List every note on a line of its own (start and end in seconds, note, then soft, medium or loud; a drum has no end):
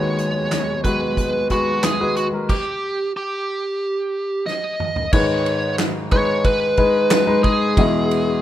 0.00 2.45 D#2 soft
0.00 2.46 D#2 medium
0.00 2.47 B2 medium
0.00 2.45 D#3 soft
0.00 2.46 F#3 medium
0.00 0.68 G#3 medium
0.00 2.46 G#3 medium
0.00 0.68 F#4 medium
0.00 2.45 G#4 medium
0.00 0.67 B4 medium
0.00 0.80 C#5 medium
0.00 2.45 D#5 medium
0.18 closed hi-hat medium
0.52 snare medium
0.52 clap medium
0.52 closed hi-hat medium
0.84 1.39 G#3 medium
0.84 1.40 F#4 medium
0.84 1.46 B4 medium
0.84 1.39 B4 medium
0.84 kick medium
0.84 closed hi-hat medium
1.17 kick medium
1.17 closed hi-hat medium
1.50 1.91 G#3 medium
1.50 1.92 F#4 medium
1.50 1.82 F#4 medium
1.50 1.92 B4 medium
1.50 kick medium
1.50 closed hi-hat medium
1.83 2.16 G#4 medium
1.83 snare loud
1.83 clap medium
1.83 closed hi-hat medium
2.01 2.27 G#3 medium
2.01 2.27 F#4 medium
2.01 2.28 B4 medium
2.16 2.26 F#4 medium
2.16 closed hi-hat medium
2.33 2.46 G#3 medium
2.33 2.47 F#4 soft
2.33 2.47 A#4 medium
2.49 3.11 G4 medium
2.49 kick loud
2.49 crash medium
3.17 4.77 G4 medium
4.46 5.12 D#5 medium
4.46 snare medium
4.80 mid tom medium
4.96 floor tom medium
5.13 7.73 G#2 soft
5.13 7.73 D#3 medium
5.13 5.96 G#3 medium
5.13 5.95 D#4 medium
5.13 5.96 B4 medium
5.13 5.75 C#5 medium
5.13 kick loud
5.13 crash loud
5.46 ride medium
5.79 snare medium
5.79 clap medium
5.79 ride medium
6.11 6.67 G#3 medium
6.11 6.67 D#4 medium
6.11 6.67 B4 medium
6.11 6.46 C#5 medium
6.11 kick loud
6.11 ride medium
6.44 7.43 B4 medium
6.44 kick loud
6.44 ride medium
6.77 7.19 G#3 medium
6.77 7.19 D#4 medium
6.77 7.19 B4 medium
6.77 kick medium
6.77 ride medium
7.11 snare loud
7.11 clap medium
7.11 ride medium
7.27 7.69 G#3 medium
7.27 7.69 D#4 medium
7.27 7.69 B4 medium
7.43 8.42 G#4 medium
7.43 kick medium
7.43 ride medium
7.77 8.42 E2 medium
7.77 8.42 B2 medium
7.77 8.42 G#3 medium
7.77 8.42 E4 medium
7.77 8.42 D#5 medium
7.77 kick loud
7.77 ride medium
8.11 ride medium